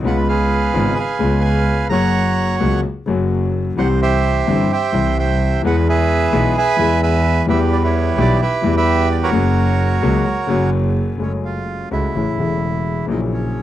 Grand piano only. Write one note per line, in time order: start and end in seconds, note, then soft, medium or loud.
0.03 0.71 C#2 medium
0.03 0.04 C#3 medium
0.03 0.71 C#3 medium
0.03 0.71 G#3 medium
0.03 0.71 B3 medium
0.07 0.72 F4 medium
0.73 0.94 G#1 medium
0.73 0.94 G#2 medium
0.73 0.94 C#3 medium
0.73 0.94 G#3 medium
0.73 0.94 B3 medium
0.73 0.94 F4 medium
1.19 1.87 C#2 medium
1.19 1.87 C#3 medium
1.19 1.87 G#3 medium
1.19 1.87 B3 medium
1.19 1.88 F4 medium
1.89 2.57 F#2 medium
1.89 2.56 C#3 medium
1.89 2.57 F#3 medium
1.89 2.57 A#3 medium
1.89 2.58 F#4 medium
2.60 2.80 C#2 medium
2.60 2.80 C#3 medium
2.60 2.80 F#3 medium
2.60 2.80 A#3 medium
2.60 2.80 F#4 medium
3.06 3.74 F#2 medium
3.06 3.73 C#3 medium
3.06 3.74 F#3 medium
3.06 3.75 A#3 soft
3.06 3.75 F#4 medium
3.77 4.45 C2 medium
3.77 4.45 C3 medium
3.77 4.44 E3 medium
3.77 4.44 G3 medium
3.77 4.45 C4 medium
3.81 4.46 G4 medium
4.47 4.67 G1 medium
4.47 4.68 G2 medium
4.47 4.67 E3 medium
4.47 4.67 G3 medium
4.47 4.67 C4 medium
4.47 4.68 G4 medium
4.92 5.60 C2 medium
4.92 5.61 C3 medium
4.92 5.60 E3 medium
4.92 5.60 G3 medium
4.92 5.61 C4 medium
4.96 5.62 G4 medium
5.64 6.30 E2 medium
5.64 6.30 E3 medium
5.64 6.30 G#3 medium
5.64 6.31 B3 medium
5.64 6.31 G#4 medium
6.32 6.53 B1 medium
6.32 6.53 B2 medium
6.32 6.53 E3 medium
6.32 6.53 G#3 medium
6.32 6.52 B3 medium
6.32 6.53 G#4 medium
6.79 7.45 E2 medium
6.79 7.45 E3 medium
6.79 7.45 G#3 medium
6.79 7.45 B3 medium
6.79 7.46 G#4 medium
7.48 8.15 E2 medium
7.48 8.15 E3 medium
7.48 8.14 G3 medium
7.48 8.15 B3 medium
7.48 8.16 G4 medium
8.18 8.38 B1 medium
8.18 8.38 B2 medium
8.18 8.37 E3 medium
8.18 8.38 G3 medium
8.18 8.38 B3 medium
8.18 8.38 G4 medium
8.62 9.30 E2 medium
8.62 8.63 E3 medium
8.62 9.30 E3 medium
8.62 9.30 G3 medium
8.62 9.30 B3 medium
8.66 9.31 G4 medium
9.31 9.99 F#2 medium
9.31 9.98 C#3 medium
9.31 9.99 F#3 medium
9.31 10.00 A#3 medium
9.31 10.00 F#4 medium
10.02 10.23 C#2 medium
10.02 10.22 C#3 medium
10.02 10.23 F#3 medium
10.02 10.22 A#3 medium
10.02 10.23 F#4 medium
10.47 11.17 F#2 medium
10.47 11.16 C#3 medium
10.47 11.17 F#3 medium
10.47 11.18 A#3 medium
10.51 11.18 F#4 medium
11.18 11.88 F#2 medium
11.18 11.87 C#3 soft
11.18 11.88 F#3 medium
11.18 11.88 G#3 soft
11.18 11.88 A3 soft
11.22 11.89 G#4 medium
11.91 12.11 C#2 medium
11.91 12.11 C#3 medium
11.91 12.11 G#3 soft
11.91 12.12 A3 soft
11.91 12.12 F#4 medium
12.15 12.35 A1 medium
12.15 12.35 A2 medium
12.15 12.35 C#3 soft
12.15 12.35 E3 soft
12.15 12.36 A3 soft
12.15 12.36 E4 medium
12.38 13.06 E1 medium
12.38 13.06 E2 medium
12.38 13.05 C#3 soft
12.38 13.06 E3 soft
12.38 13.06 A3 soft
12.38 13.07 E4 medium
13.06 13.62 A#1 medium
13.06 13.62 A#2 medium
13.06 13.62 C#3 medium
13.06 13.62 F#3 medium
13.06 13.62 A#3 soft
13.11 13.62 E4 medium